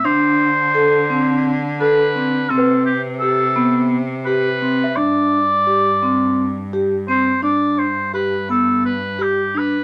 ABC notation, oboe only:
X:1
M:7/8
L:1/8
Q:1/4=85
K:Gmix
V:1 name="Oboe"
c4 z B2 | A G A2 z B2 | d4- d z c | d c B A B G B |]